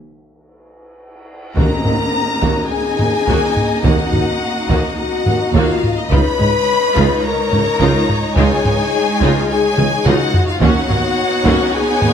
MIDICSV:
0, 0, Header, 1, 12, 480
1, 0, Start_track
1, 0, Key_signature, -6, "minor"
1, 0, Tempo, 569260
1, 1329, Time_signature, 4, 2, 24, 8
1, 5635, Tempo, 561272
1, 10295, End_track
2, 0, Start_track
2, 0, Title_t, "Violin section"
2, 0, Program_c, 0, 48
2, 1325, Note_on_c, 0, 82, 113
2, 2249, Note_off_c, 0, 82, 0
2, 2282, Note_on_c, 0, 80, 111
2, 3240, Note_off_c, 0, 80, 0
2, 3241, Note_on_c, 0, 78, 114
2, 4187, Note_off_c, 0, 78, 0
2, 4197, Note_on_c, 0, 78, 100
2, 4663, Note_off_c, 0, 78, 0
2, 4669, Note_on_c, 0, 77, 85
2, 5026, Note_off_c, 0, 77, 0
2, 5034, Note_on_c, 0, 75, 94
2, 5153, Note_off_c, 0, 75, 0
2, 5154, Note_on_c, 0, 83, 127
2, 6103, Note_on_c, 0, 82, 110
2, 6114, Note_off_c, 0, 83, 0
2, 7074, Note_off_c, 0, 82, 0
2, 7075, Note_on_c, 0, 80, 127
2, 8020, Note_off_c, 0, 80, 0
2, 8030, Note_on_c, 0, 80, 125
2, 8505, Note_off_c, 0, 80, 0
2, 8518, Note_on_c, 0, 78, 109
2, 8877, Note_off_c, 0, 78, 0
2, 8881, Note_on_c, 0, 77, 101
2, 8997, Note_off_c, 0, 77, 0
2, 8997, Note_on_c, 0, 78, 127
2, 9934, Note_off_c, 0, 78, 0
2, 9958, Note_on_c, 0, 80, 127
2, 10295, Note_off_c, 0, 80, 0
2, 10295, End_track
3, 0, Start_track
3, 0, Title_t, "Violin section"
3, 0, Program_c, 1, 48
3, 1331, Note_on_c, 1, 82, 97
3, 2252, Note_off_c, 1, 82, 0
3, 2285, Note_on_c, 1, 80, 104
3, 3222, Note_off_c, 1, 80, 0
3, 3245, Note_on_c, 1, 78, 90
3, 4178, Note_off_c, 1, 78, 0
3, 4200, Note_on_c, 1, 78, 96
3, 4664, Note_on_c, 1, 77, 102
3, 4665, Note_off_c, 1, 78, 0
3, 5031, Note_off_c, 1, 77, 0
3, 5035, Note_on_c, 1, 75, 92
3, 5149, Note_on_c, 1, 83, 111
3, 5156, Note_off_c, 1, 75, 0
3, 6101, Note_on_c, 1, 82, 97
3, 6112, Note_off_c, 1, 83, 0
3, 7073, Note_off_c, 1, 82, 0
3, 7077, Note_on_c, 1, 80, 110
3, 8021, Note_off_c, 1, 80, 0
3, 8045, Note_on_c, 1, 80, 118
3, 8512, Note_off_c, 1, 80, 0
3, 8514, Note_on_c, 1, 78, 124
3, 8875, Note_off_c, 1, 78, 0
3, 8881, Note_on_c, 1, 77, 96
3, 8997, Note_off_c, 1, 77, 0
3, 8998, Note_on_c, 1, 78, 114
3, 9934, Note_off_c, 1, 78, 0
3, 9953, Note_on_c, 1, 80, 121
3, 10295, Note_off_c, 1, 80, 0
3, 10295, End_track
4, 0, Start_track
4, 0, Title_t, "String section"
4, 0, Program_c, 2, 48
4, 1308, Note_on_c, 2, 75, 93
4, 1311, Note_on_c, 2, 58, 90
4, 1311, Note_on_c, 2, 82, 91
4, 1312, Note_on_c, 2, 63, 92
4, 5112, Note_off_c, 2, 75, 0
4, 5113, Note_off_c, 2, 58, 0
4, 5113, Note_off_c, 2, 82, 0
4, 5114, Note_off_c, 2, 63, 0
4, 5139, Note_on_c, 2, 73, 115
4, 5142, Note_on_c, 2, 63, 106
4, 5144, Note_on_c, 2, 75, 98
4, 5145, Note_on_c, 2, 56, 102
4, 8957, Note_off_c, 2, 63, 0
4, 8984, Note_off_c, 2, 73, 0
4, 8988, Note_on_c, 2, 63, 126
4, 8990, Note_on_c, 2, 78, 111
4, 8992, Note_off_c, 2, 56, 0
4, 8992, Note_off_c, 2, 75, 0
4, 8994, Note_on_c, 2, 73, 122
4, 8995, Note_on_c, 2, 59, 118
4, 10295, Note_off_c, 2, 59, 0
4, 10295, Note_off_c, 2, 63, 0
4, 10295, Note_off_c, 2, 73, 0
4, 10295, Note_off_c, 2, 78, 0
4, 10295, End_track
5, 0, Start_track
5, 0, Title_t, "French horn section"
5, 0, Program_c, 3, 60
5, 1311, Note_on_c, 3, 70, 108
5, 2242, Note_off_c, 3, 70, 0
5, 2275, Note_on_c, 3, 68, 109
5, 3228, Note_on_c, 3, 66, 109
5, 3236, Note_off_c, 3, 68, 0
5, 4169, Note_off_c, 3, 66, 0
5, 4197, Note_on_c, 3, 66, 116
5, 4663, Note_off_c, 3, 66, 0
5, 4682, Note_on_c, 3, 65, 109
5, 5040, Note_off_c, 3, 65, 0
5, 5055, Note_on_c, 3, 63, 111
5, 5154, Note_on_c, 3, 71, 127
5, 5164, Note_off_c, 3, 63, 0
5, 6114, Note_off_c, 3, 71, 0
5, 6124, Note_on_c, 3, 70, 120
5, 6937, Note_off_c, 3, 70, 0
5, 7083, Note_on_c, 3, 68, 127
5, 8024, Note_off_c, 3, 68, 0
5, 8048, Note_on_c, 3, 68, 127
5, 8514, Note_off_c, 3, 68, 0
5, 8530, Note_on_c, 3, 66, 127
5, 8883, Note_off_c, 3, 66, 0
5, 8893, Note_on_c, 3, 65, 126
5, 8995, Note_on_c, 3, 66, 127
5, 9005, Note_off_c, 3, 65, 0
5, 9933, Note_off_c, 3, 66, 0
5, 9971, Note_on_c, 3, 68, 127
5, 10295, Note_off_c, 3, 68, 0
5, 10295, End_track
6, 0, Start_track
6, 0, Title_t, "Viola section"
6, 0, Program_c, 4, 48
6, 1320, Note_on_c, 4, 58, 82
6, 1320, Note_on_c, 4, 66, 86
6, 1547, Note_off_c, 4, 58, 0
6, 1547, Note_off_c, 4, 66, 0
6, 1572, Note_on_c, 4, 51, 60
6, 1574, Note_on_c, 4, 58, 60
6, 1639, Note_off_c, 4, 51, 0
6, 1642, Note_off_c, 4, 58, 0
6, 2038, Note_on_c, 4, 66, 85
6, 2039, Note_on_c, 4, 58, 91
6, 2264, Note_off_c, 4, 58, 0
6, 2264, Note_off_c, 4, 66, 0
6, 2517, Note_on_c, 4, 63, 67
6, 2521, Note_on_c, 4, 54, 75
6, 2585, Note_off_c, 4, 63, 0
6, 2589, Note_off_c, 4, 54, 0
6, 2761, Note_on_c, 4, 58, 91
6, 2764, Note_on_c, 4, 66, 102
6, 2984, Note_off_c, 4, 58, 0
6, 2986, Note_off_c, 4, 66, 0
6, 3243, Note_on_c, 4, 66, 86
6, 3244, Note_on_c, 4, 58, 94
6, 3464, Note_off_c, 4, 66, 0
6, 3465, Note_off_c, 4, 58, 0
6, 3490, Note_on_c, 4, 58, 60
6, 3492, Note_on_c, 4, 51, 64
6, 3557, Note_off_c, 4, 58, 0
6, 3560, Note_off_c, 4, 51, 0
6, 3956, Note_on_c, 4, 66, 94
6, 3963, Note_on_c, 4, 58, 88
6, 4178, Note_off_c, 4, 66, 0
6, 4182, Note_off_c, 4, 58, 0
6, 4442, Note_on_c, 4, 54, 77
6, 4443, Note_on_c, 4, 63, 83
6, 4510, Note_off_c, 4, 54, 0
6, 4510, Note_off_c, 4, 63, 0
6, 4674, Note_on_c, 4, 66, 110
6, 4676, Note_on_c, 4, 58, 116
6, 4898, Note_off_c, 4, 66, 0
6, 4899, Note_off_c, 4, 58, 0
6, 5155, Note_on_c, 4, 65, 94
6, 5157, Note_on_c, 4, 63, 95
6, 5378, Note_off_c, 4, 65, 0
6, 5379, Note_off_c, 4, 63, 0
6, 5386, Note_on_c, 4, 56, 80
6, 5388, Note_on_c, 4, 61, 86
6, 5454, Note_off_c, 4, 56, 0
6, 5455, Note_off_c, 4, 61, 0
6, 5866, Note_on_c, 4, 63, 101
6, 5869, Note_on_c, 4, 65, 111
6, 6094, Note_off_c, 4, 63, 0
6, 6095, Note_off_c, 4, 65, 0
6, 6349, Note_on_c, 4, 63, 85
6, 6351, Note_on_c, 4, 61, 81
6, 6418, Note_off_c, 4, 63, 0
6, 6419, Note_off_c, 4, 61, 0
6, 6585, Note_on_c, 4, 65, 108
6, 6587, Note_on_c, 4, 63, 106
6, 6815, Note_off_c, 4, 65, 0
6, 6816, Note_off_c, 4, 63, 0
6, 7072, Note_on_c, 4, 65, 108
6, 7073, Note_on_c, 4, 63, 107
6, 7299, Note_off_c, 4, 65, 0
6, 7300, Note_off_c, 4, 63, 0
6, 7316, Note_on_c, 4, 56, 91
6, 7320, Note_on_c, 4, 61, 78
6, 7385, Note_off_c, 4, 56, 0
6, 7389, Note_off_c, 4, 61, 0
6, 7804, Note_on_c, 4, 63, 102
6, 7805, Note_on_c, 4, 65, 120
6, 8026, Note_off_c, 4, 63, 0
6, 8026, Note_off_c, 4, 65, 0
6, 8278, Note_on_c, 4, 63, 93
6, 8279, Note_on_c, 4, 61, 89
6, 8347, Note_off_c, 4, 63, 0
6, 8348, Note_off_c, 4, 61, 0
6, 8520, Note_on_c, 4, 65, 111
6, 8521, Note_on_c, 4, 63, 113
6, 8742, Note_off_c, 4, 65, 0
6, 8743, Note_off_c, 4, 63, 0
6, 9001, Note_on_c, 4, 61, 126
6, 9002, Note_on_c, 4, 66, 112
6, 9222, Note_off_c, 4, 61, 0
6, 9223, Note_off_c, 4, 66, 0
6, 9240, Note_on_c, 4, 54, 93
6, 9241, Note_on_c, 4, 61, 93
6, 9308, Note_off_c, 4, 54, 0
6, 9309, Note_off_c, 4, 61, 0
6, 9714, Note_on_c, 4, 61, 125
6, 9716, Note_on_c, 4, 66, 122
6, 9937, Note_off_c, 4, 61, 0
6, 9938, Note_off_c, 4, 66, 0
6, 10190, Note_on_c, 4, 59, 91
6, 10190, Note_on_c, 4, 63, 97
6, 10258, Note_off_c, 4, 59, 0
6, 10258, Note_off_c, 4, 63, 0
6, 10295, End_track
7, 0, Start_track
7, 0, Title_t, "Timpani"
7, 0, Program_c, 5, 47
7, 1328, Note_on_c, 5, 51, 105
7, 2012, Note_off_c, 5, 51, 0
7, 10295, End_track
8, 0, Start_track
8, 0, Title_t, "Cello section"
8, 0, Program_c, 6, 48
8, 1324, Note_on_c, 6, 39, 97
8, 1391, Note_off_c, 6, 39, 0
8, 1564, Note_on_c, 6, 39, 68
8, 1631, Note_off_c, 6, 39, 0
8, 2046, Note_on_c, 6, 39, 87
8, 2113, Note_off_c, 6, 39, 0
8, 2519, Note_on_c, 6, 39, 67
8, 2586, Note_off_c, 6, 39, 0
8, 2767, Note_on_c, 6, 39, 98
8, 2834, Note_off_c, 6, 39, 0
8, 3237, Note_on_c, 6, 39, 109
8, 3304, Note_off_c, 6, 39, 0
8, 3478, Note_on_c, 6, 39, 67
8, 3545, Note_off_c, 6, 39, 0
8, 3952, Note_on_c, 6, 39, 108
8, 4020, Note_off_c, 6, 39, 0
8, 4428, Note_on_c, 6, 39, 73
8, 4496, Note_off_c, 6, 39, 0
8, 4669, Note_on_c, 6, 39, 113
8, 4736, Note_off_c, 6, 39, 0
8, 5150, Note_on_c, 6, 37, 111
8, 5218, Note_off_c, 6, 37, 0
8, 5390, Note_on_c, 6, 37, 78
8, 5457, Note_off_c, 6, 37, 0
8, 5872, Note_on_c, 6, 37, 110
8, 5941, Note_off_c, 6, 37, 0
8, 6349, Note_on_c, 6, 37, 84
8, 6417, Note_off_c, 6, 37, 0
8, 6583, Note_on_c, 6, 37, 122
8, 6651, Note_off_c, 6, 37, 0
8, 7069, Note_on_c, 6, 37, 122
8, 7137, Note_off_c, 6, 37, 0
8, 7318, Note_on_c, 6, 37, 78
8, 7386, Note_off_c, 6, 37, 0
8, 7792, Note_on_c, 6, 37, 121
8, 7860, Note_off_c, 6, 37, 0
8, 8277, Note_on_c, 6, 37, 80
8, 8345, Note_off_c, 6, 37, 0
8, 8519, Note_on_c, 6, 37, 122
8, 8588, Note_off_c, 6, 37, 0
8, 8995, Note_on_c, 6, 39, 127
8, 9063, Note_off_c, 6, 39, 0
8, 9241, Note_on_c, 6, 39, 88
8, 9309, Note_off_c, 6, 39, 0
8, 9714, Note_on_c, 6, 39, 127
8, 9783, Note_off_c, 6, 39, 0
8, 10195, Note_on_c, 6, 39, 84
8, 10263, Note_off_c, 6, 39, 0
8, 10295, End_track
9, 0, Start_track
9, 0, Title_t, "Double bass section"
9, 0, Program_c, 7, 48
9, 1316, Note_on_c, 7, 39, 89
9, 1384, Note_off_c, 7, 39, 0
9, 1563, Note_on_c, 7, 39, 64
9, 1630, Note_off_c, 7, 39, 0
9, 2045, Note_on_c, 7, 39, 100
9, 2113, Note_off_c, 7, 39, 0
9, 2525, Note_on_c, 7, 39, 72
9, 2593, Note_off_c, 7, 39, 0
9, 2758, Note_on_c, 7, 39, 94
9, 2826, Note_off_c, 7, 39, 0
9, 3235, Note_on_c, 7, 39, 96
9, 3302, Note_off_c, 7, 39, 0
9, 3473, Note_on_c, 7, 39, 65
9, 3540, Note_off_c, 7, 39, 0
9, 3951, Note_on_c, 7, 39, 105
9, 4018, Note_off_c, 7, 39, 0
9, 4427, Note_on_c, 7, 39, 72
9, 4495, Note_off_c, 7, 39, 0
9, 4662, Note_on_c, 7, 39, 104
9, 4730, Note_off_c, 7, 39, 0
9, 5143, Note_on_c, 7, 37, 105
9, 5211, Note_off_c, 7, 37, 0
9, 5391, Note_on_c, 7, 37, 77
9, 5459, Note_off_c, 7, 37, 0
9, 5871, Note_on_c, 7, 37, 115
9, 5939, Note_off_c, 7, 37, 0
9, 6355, Note_on_c, 7, 37, 80
9, 6423, Note_off_c, 7, 37, 0
9, 6597, Note_on_c, 7, 37, 102
9, 6666, Note_off_c, 7, 37, 0
9, 7077, Note_on_c, 7, 37, 114
9, 7145, Note_off_c, 7, 37, 0
9, 7323, Note_on_c, 7, 37, 79
9, 7391, Note_off_c, 7, 37, 0
9, 7804, Note_on_c, 7, 37, 123
9, 7873, Note_off_c, 7, 37, 0
9, 8280, Note_on_c, 7, 37, 82
9, 8349, Note_off_c, 7, 37, 0
9, 8524, Note_on_c, 7, 37, 118
9, 8592, Note_off_c, 7, 37, 0
9, 8996, Note_on_c, 7, 39, 117
9, 9065, Note_off_c, 7, 39, 0
9, 9242, Note_on_c, 7, 39, 79
9, 9310, Note_off_c, 7, 39, 0
9, 9715, Note_on_c, 7, 39, 116
9, 9784, Note_off_c, 7, 39, 0
9, 10203, Note_on_c, 7, 39, 86
9, 10272, Note_off_c, 7, 39, 0
9, 10295, End_track
10, 0, Start_track
10, 0, Title_t, "Tuba"
10, 0, Program_c, 8, 58
10, 1324, Note_on_c, 8, 39, 77
10, 1421, Note_off_c, 8, 39, 0
10, 1563, Note_on_c, 8, 39, 73
10, 1659, Note_off_c, 8, 39, 0
10, 2038, Note_on_c, 8, 39, 113
10, 2135, Note_off_c, 8, 39, 0
10, 2526, Note_on_c, 8, 39, 70
10, 2621, Note_off_c, 8, 39, 0
10, 2765, Note_on_c, 8, 39, 90
10, 2860, Note_off_c, 8, 39, 0
10, 3245, Note_on_c, 8, 39, 87
10, 3340, Note_off_c, 8, 39, 0
10, 3481, Note_on_c, 8, 39, 75
10, 3576, Note_off_c, 8, 39, 0
10, 3959, Note_on_c, 8, 39, 109
10, 4054, Note_off_c, 8, 39, 0
10, 4433, Note_on_c, 8, 39, 75
10, 4528, Note_off_c, 8, 39, 0
10, 4668, Note_on_c, 8, 39, 103
10, 4766, Note_off_c, 8, 39, 0
10, 5159, Note_on_c, 8, 37, 100
10, 5254, Note_off_c, 8, 37, 0
10, 5395, Note_on_c, 8, 37, 80
10, 5491, Note_off_c, 8, 37, 0
10, 5871, Note_on_c, 8, 37, 122
10, 5968, Note_off_c, 8, 37, 0
10, 6351, Note_on_c, 8, 37, 81
10, 6448, Note_off_c, 8, 37, 0
10, 6595, Note_on_c, 8, 37, 116
10, 6692, Note_off_c, 8, 37, 0
10, 7071, Note_on_c, 8, 37, 113
10, 7169, Note_off_c, 8, 37, 0
10, 7323, Note_on_c, 8, 37, 86
10, 7418, Note_off_c, 8, 37, 0
10, 7801, Note_on_c, 8, 37, 127
10, 7897, Note_off_c, 8, 37, 0
10, 8285, Note_on_c, 8, 37, 84
10, 8379, Note_off_c, 8, 37, 0
10, 8517, Note_on_c, 8, 37, 127
10, 8613, Note_off_c, 8, 37, 0
10, 8997, Note_on_c, 8, 39, 113
10, 9093, Note_off_c, 8, 39, 0
10, 9231, Note_on_c, 8, 39, 81
10, 9327, Note_off_c, 8, 39, 0
10, 9706, Note_on_c, 8, 39, 127
10, 9804, Note_off_c, 8, 39, 0
10, 10198, Note_on_c, 8, 39, 79
10, 10293, Note_off_c, 8, 39, 0
10, 10295, End_track
11, 0, Start_track
11, 0, Title_t, "Taiko and cinematic ensemble drums"
11, 1324, Note_on_c, 9, 41, 104
11, 1408, Note_off_c, 9, 41, 0
11, 1560, Note_on_c, 9, 45, 56
11, 1644, Note_off_c, 9, 45, 0
11, 2042, Note_on_c, 9, 41, 79
11, 2127, Note_off_c, 9, 41, 0
11, 2522, Note_on_c, 9, 45, 55
11, 2606, Note_off_c, 9, 45, 0
11, 2763, Note_on_c, 9, 41, 89
11, 2847, Note_off_c, 9, 41, 0
11, 3006, Note_on_c, 9, 45, 53
11, 3090, Note_off_c, 9, 45, 0
11, 3243, Note_on_c, 9, 41, 109
11, 3327, Note_off_c, 9, 41, 0
11, 3484, Note_on_c, 9, 45, 56
11, 3568, Note_off_c, 9, 45, 0
11, 3960, Note_on_c, 9, 41, 83
11, 4044, Note_off_c, 9, 41, 0
11, 4438, Note_on_c, 9, 45, 59
11, 4522, Note_off_c, 9, 45, 0
11, 4678, Note_on_c, 9, 41, 89
11, 4762, Note_off_c, 9, 41, 0
11, 4921, Note_on_c, 9, 45, 57
11, 5005, Note_off_c, 9, 45, 0
11, 5162, Note_on_c, 9, 41, 113
11, 5246, Note_off_c, 9, 41, 0
11, 5404, Note_on_c, 9, 45, 64
11, 5489, Note_off_c, 9, 45, 0
11, 5879, Note_on_c, 9, 41, 97
11, 5964, Note_off_c, 9, 41, 0
11, 6357, Note_on_c, 9, 45, 60
11, 6443, Note_off_c, 9, 45, 0
11, 6599, Note_on_c, 9, 41, 90
11, 6685, Note_off_c, 9, 41, 0
11, 6842, Note_on_c, 9, 45, 59
11, 6928, Note_off_c, 9, 45, 0
11, 7071, Note_on_c, 9, 41, 112
11, 7157, Note_off_c, 9, 41, 0
11, 7319, Note_on_c, 9, 45, 65
11, 7405, Note_off_c, 9, 45, 0
11, 7805, Note_on_c, 9, 41, 91
11, 7890, Note_off_c, 9, 41, 0
11, 8284, Note_on_c, 9, 47, 94
11, 8370, Note_off_c, 9, 47, 0
11, 8523, Note_on_c, 9, 47, 102
11, 8609, Note_off_c, 9, 47, 0
11, 8763, Note_on_c, 9, 43, 111
11, 8849, Note_off_c, 9, 43, 0
11, 8997, Note_on_c, 9, 41, 112
11, 9083, Note_off_c, 9, 41, 0
11, 9241, Note_on_c, 9, 45, 61
11, 9326, Note_off_c, 9, 45, 0
11, 9716, Note_on_c, 9, 41, 89
11, 9802, Note_off_c, 9, 41, 0
11, 10197, Note_on_c, 9, 45, 67
11, 10283, Note_off_c, 9, 45, 0
11, 10295, End_track
12, 0, Start_track
12, 0, Title_t, "Tam-tam"
12, 1321, Note_on_c, 9, 52, 59
12, 1405, Note_off_c, 9, 52, 0
12, 10295, End_track
0, 0, End_of_file